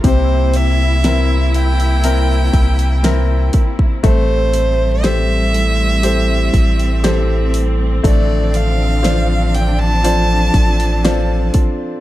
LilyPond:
<<
  \new Staff \with { instrumentName = "Violin" } { \time 4/4 \key c \mixolydian \tempo 4 = 60 c''8 e''4 g''2 r8 | c''4 e''2~ e''8 r8 | d''8 f''4 g''16 a''4.~ a''16 r8 | }
  \new Staff \with { instrumentName = "Grand piano" } { \time 4/4 \key c \mixolydian c4 <c' e' bes'>4 <c' e' bes'>4 <c' e' bes'>4 | a4 <g' a' c''>4 <g' a' c''>4 <g' a' c''>4 | a4 <f' c'' d''>4 <f' c'' d''>4 <f' c'' d''>4 | }
  \new Staff \with { instrumentName = "Steel-string acoustic guitar" } { \time 4/4 \key c \mixolydian r1 | <a, e g c' e' a'>4. <g c' e' a'>8 <g c' e' a'>4 <g c' e' a'>4 | <a, d f c' d' a'>2 <f c' d' a'>4 <f c' d' a'>4 | }
  \new Staff \with { instrumentName = "String section" } { \time 4/4 \key c \mixolydian <c bes e'>1 | <g a c'>1 | <f d'>1 | }
  \new Staff \with { instrumentName = "Sub bass" } { \clef bass \time 4/4 \key c \mixolydian c,2~ c,8 c,4 r8 | a,,2~ a,,8 a,,4. | a,,2~ a,,8 a,,4 r8 | }
  \new DrumStaff \with { instrumentName = "Drums" } \drummode { \time 4/4 <hho bd>8 hho8 <hho sn>8 hho16 hho16 hho8 <hho bd>16 hho16 <hho sn>8 <hho bd>16 bd16 | <hho bd>8 hho8 <hho sn>8 hho8 hho8 <hho bd>16 hho16 <hho sn>8 hho8 | <hho bd>8 hho8 <hho sn>8 hho8 hho8 <hho bd>16 hho16 <hho sn>8 <hho bd>8 | }
>>